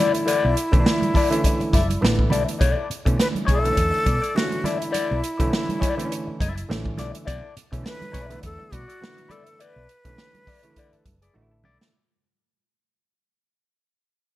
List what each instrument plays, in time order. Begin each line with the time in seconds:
Already playing: clav D3 E3 A3 C#4
0.00 clean electric guitar E4 A4 D5, flute E4
0.15 muted clean electric guitar stroke, closed hi-hat
0.26 clean electric guitar E4 A4 D5, closed hi-hat
0.45 fingered electric bass B1
0.57 closed hi-hat
0.72 fingered electric bass B1, clav D3 E3 A3 C#4, muted clean electric guitar stroke, kick, closed hi-hat
0.80 clav D4
0.85 muted clean electric guitar stroke, snare
1.01 muted clean electric guitar stroke, closed hi-hat, high conga
1.14 clean electric guitar E4 A4 D5, kick, open hi-hat, high conga, low conga
1.30 clav D3 E3 A3 C#4, muted clean electric guitar stroke, closed hi-hat
1.44 muted clean electric guitar stroke, kick, closed hi-hat, muted conga
1.60 muted clean electric guitar stroke, muted fingered electric bass stroke, closed hi-hat, muted conga
1.73 fingered electric bass F#1, clean electric guitar E4 A4 E5, clav D5, kick, snare, closed hi-hat, high conga
1.90 muted clean electric guitar stroke, closed hi-hat, high conga
2.01 fingered electric bass A1, clav D3 E3 A3 B3 B4, snare, muted conga
2.19 muted clean electric guitar stroke, kick
2.30 fingered electric bass B1, clean electric guitar E4 A4 D5, clav A4, closed hi-hat, high conga, low conga
2.46 muted clean electric guitar stroke, closed hi-hat
2.59 fingered electric bass B1, clean electric guitar D#4 G#4 C#5, kick, closed hi-hat, muted conga
2.71 clean electric guitar E4 A4 D5
2.90 muted fingered electric bass stroke, closed hi-hat
3.05 fingered electric bass B2, clav D3 E3 A3 C#4, muted clean electric guitar stroke, kick, closed hi-hat
3.17 flute B4, muted clean electric guitar stroke, snare
3.33 muted clean electric guitar stroke, closed hi-hat, high conga
3.45 fingered electric bass B1, clean electric guitar E4 A4 D5, kick, closed hi-hat, high conga, low conga
3.50 flute A4
3.61 clav D3 E3, muted clean electric guitar stroke, closed hi-hat
3.66 clav A3 B3
3.72 clav C#4, muted clean electric guitar stroke
3.77 fingered electric bass E2, kick, closed hi-hat
3.91 muted clean electric guitar stroke, closed hi-hat
4.05 fingered electric bass B2, clean electric guitar E4 A4 D5, kick, closed hi-hat, high conga
4.22 clean electric guitar E4 A4 D5, closed hi-hat
4.35 clav D3 E3 A3 C4, flute F#4, snare
4.43 clav C#4
4.51 muted clean electric guitar stroke, closed hi-hat, muted conga
4.64 clean electric guitar E4 A4 D5, flute E4, snare, closed hi-hat, high conga, low conga
4.80 muted clean electric guitar stroke, closed hi-hat
4.91 clean electric guitar E4 A4 D5, closed hi-hat, muted conga
5.11 fingered electric bass B1, muted conga
5.24 closed hi-hat
5.38 fingered electric bass B1, clav D3 E3 A3 C#4, muted clean electric guitar stroke, kick, closed hi-hat
5.51 muted clean electric guitar stroke, snare, muted conga
5.66 muted clean electric guitar stroke, closed hi-hat, high conga
5.80 clean electric guitar E4 A4 D5, kick, closed hi-hat, high conga, low conga
5.97 clav D3 E3 A3 C4, muted clean electric guitar stroke, closed hi-hat
6.05 clav C#4
6.11 muted clean electric guitar stroke, closed hi-hat
6.27 muted clean electric guitar stroke, muted fingered electric bass stroke
6.40 fingered electric bass F#1, clean electric guitar E4 A4 E5, kick, closed hi-hat, high conga
6.56 muted clean electric guitar stroke, closed hi-hat
6.69 fingered electric bass A1, clav D3 E3 A3 C#4, snare
6.85 muted clean electric guitar stroke, kick, muted conga
6.98 fingered electric bass B1, clean electric guitar E4 A4 D5, snare, closed hi-hat, high conga, low conga
7.14 muted clean electric guitar stroke, closed hi-hat
7.25 fingered electric bass B1, clean electric guitar E4 A4 D5, kick, closed hi-hat, muted conga
7.57 muted fingered electric bass stroke, closed hi-hat
7.71 fingered electric bass B2, clav C#3 E3 A3 C#4, muted clean electric guitar stroke, kick, closed hi-hat
7.78 clav D3
7.83 flute B4, muted clean electric guitar stroke, snare, muted conga
8.00 muted clean electric guitar stroke, closed hi-hat, muted conga, high conga
8.12 fingered electric bass B1, clean electric guitar E4 A4 D5, kick, closed hi-hat, high conga, low conga
8.29 clav D3 E3 A3 B3, muted clean electric guitar stroke, closed hi-hat
8.41 fingered electric bass E2, flute A4, muted clean electric guitar stroke, kick, closed hi-hat, muted conga
8.59 muted clean electric guitar stroke, muted conga
8.72 fingered electric bass B2, clean electric guitar E4 A4 D5, flute F#4, kick, closed hi-hat, high conga
8.88 clean electric guitar E4 A4 D5, closed hi-hat
9.01 clav C#3 E3 A3 B3, snare, muted conga
9.07 clav D3
9.17 muted clean electric guitar stroke, closed hi-hat, muted conga
9.28 clean electric guitar E4 A4 D5, flute A4, closed hi-hat, high conga, low conga
9.46 muted clean electric guitar stroke, closed hi-hat
9.59 clean electric guitar E4 A4 D5, flute B4, closed hi-hat
9.76 fingered electric bass B1
9.89 closed hi-hat
10.04 fingered electric bass B1, clav D3 E3 A3 C#4, muted clean electric guitar stroke, kick, closed hi-hat
10.18 muted clean electric guitar stroke, snare, muted conga
10.34 muted clean electric guitar stroke, closed hi-hat, muted conga, high conga
10.47 clean electric guitar E4 A4 D5, clav E5, kick, open hi-hat, high conga, low conga
10.63 clav C#3 E3 A3 E4 C#5, muted clean electric guitar stroke, closed hi-hat
10.70 clav D3
10.76 clean electric guitar E4 A4 D5, clav B4, kick, closed hi-hat
10.93 clav A4, muted fingered electric bass stroke, closed hi-hat
11.06 fingered electric bass F#1, muted clean electric guitar stroke, kick, closed hi-hat, high conga
11.22 clean electric guitar E4 A4 D5, clav G#4, closed hi-hat
11.34 fingered electric bass A1, clav D3 E3 A3 D#4 F#4, muted conga
11.42 clav E4
11.51 clav A4, muted clean electric guitar stroke
11.64 fingered electric bass B1, clean electric guitar E4 A4 D5, high conga, low conga
11.80 muted clean electric guitar stroke, snare